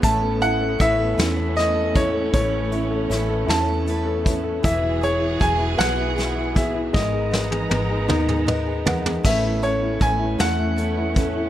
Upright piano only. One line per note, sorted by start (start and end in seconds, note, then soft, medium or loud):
0.03 2.30 A3 medium
0.22 0.60 A4 medium
0.42 0.78 E4 medium
0.61 0.97 A4 medium
0.80 1.17 E4 medium
0.99 1.35 A4 medium
1.18 1.54 E4 medium
1.37 1.73 A4 medium
1.56 1.93 E4 medium
1.75 2.12 A4 medium
1.94 2.70 E4 medium
2.13 2.50 A4 medium
2.33 4.59 E3 medium
2.52 2.89 A4 medium
2.71 3.08 E4 medium
2.91 3.27 A4 medium
3.10 3.45 E4 medium
3.29 3.65 A4 medium
3.47 3.84 E4 medium
3.66 4.04 A4 medium
3.85 4.23 E4 medium
4.05 4.42 A4 medium
4.24 4.62 E4 medium
4.44 4.63 A4 medium
4.63 6.90 E3 medium
4.82 5.19 E4 medium
5.01 5.38 G#4 medium
5.20 5.57 E4 medium
5.39 6.14 G#4 medium
5.58 5.95 E4 medium
5.78 6.90 B3 medium
5.96 6.34 E4 medium
6.16 6.54 G#4 medium
6.35 6.73 E4 medium
6.55 6.93 G#4 medium
6.75 6.93 E4 medium
6.93 9.20 G#3 medium
7.12 7.49 G#4 medium
7.32 7.68 B4 medium
7.51 7.88 G#4 medium
7.70 8.46 B4 medium
7.89 8.27 G#4 medium
8.09 9.20 D#4 medium
8.28 8.65 G#4 medium
8.48 8.84 B4 medium
8.48 8.83 D#5 medium
8.66 9.04 G#4 medium
8.86 9.23 B4 medium
8.86 9.21 F#5 medium
9.05 9.24 G#4 medium
9.24 10.37 A3 medium
9.43 9.80 E4 medium
9.62 9.99 A4 medium
9.81 10.17 E4 medium
10.01 10.76 A4 medium
10.19 10.57 E4 medium
10.39 11.49 A3 medium
10.58 10.96 E4 medium
10.78 11.15 A4 medium
10.97 11.34 E4 medium
11.17 11.49 A4 medium
11.36 11.49 E4 medium